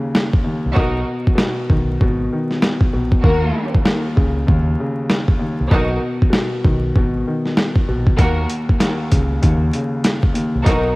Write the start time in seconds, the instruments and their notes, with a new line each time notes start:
Already playing: grand piano D#2 C#3
0.15 snare
0.33 kick
0.44 grand piano D#2
0.66 fingered electric bass C2
0.75 fingered electric bass B1, grand piano B2, string section D#4 F#4 A#4, kick
1.27 kick
1.35 grand piano B2, snare
1.70 fingered electric bass B1, grand piano D#3, kick
2.01 fingered electric bass G#1, grand piano B2, kick
2.32 grand piano D#3
2.51 snare
2.62 snare
2.81 kick
2.93 fingered electric bass A#1, grand piano B2
3.12 kick
3.23 grand piano D#2, fingered electric bass D#2, string section A#3 F#4 A#4, kick
3.75 kick
3.85 grand piano D#2, snare
4.16 fingered electric bass C#2, grand piano C#3, kick
4.47 grand piano D#2, fingered electric bass D#2, kick
4.80 grand piano C#3
5.10 snare
5.28 kick
5.39 grand piano D#2
5.61 fingered electric bass C2
5.70 fingered electric bass B1, grand piano B2, string section D#4 F#4 A#4, kick
6.22 kick
6.30 grand piano B2, snare
6.64 fingered electric bass B1, grand piano D#3, kick
6.96 fingered electric bass G#1, grand piano B2, kick
7.27 grand piano D#3
7.46 snare
7.57 snare
7.76 kick
7.88 fingered electric bass A#1, grand piano B2
8.07 kick
8.18 grand piano D#2, fingered electric bass D#2, string section A#3 F#4 A#4, kick, closed hi-hat
8.50 closed hi-hat
8.69 kick
8.80 grand piano D#2, snare, closed hi-hat
9.11 fingered electric bass C#2, grand piano C#3, kick, closed hi-hat
9.42 grand piano D#2, fingered electric bass D#2, kick, closed hi-hat
9.73 grand piano C#3, closed hi-hat
10.04 snare, closed hi-hat
10.23 kick
10.34 grand piano D#2, closed hi-hat
10.55 fingered electric bass C2
10.65 fingered electric bass B1, grand piano B2, string section D#4 F#4 A#4, kick, closed hi-hat